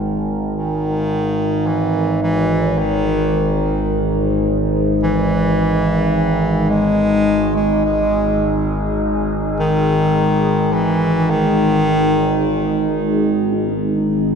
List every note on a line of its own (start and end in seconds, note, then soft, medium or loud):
0.00 13.56 G#1 medium
0.00 13.54 G#3 medium
0.00 14.35 D#4 medium
0.00 5.90 A#4 medium
0.54 1.68 D#3 medium
1.67 2.22 E3 loud
2.23 2.80 E3 loud
2.78 3.92 D#3 loud
5.03 6.71 E3 loud
5.58 13.56 G#4 medium
6.70 7.56 G#3 loud
7.56 7.85 G#3 medium
7.85 8.68 G#3 medium
9.60 10.74 D#3 loud
10.73 11.32 E3 loud
11.30 12.99 D#3 loud
13.57 14.35 G#1 medium
13.57 14.35 G#3 medium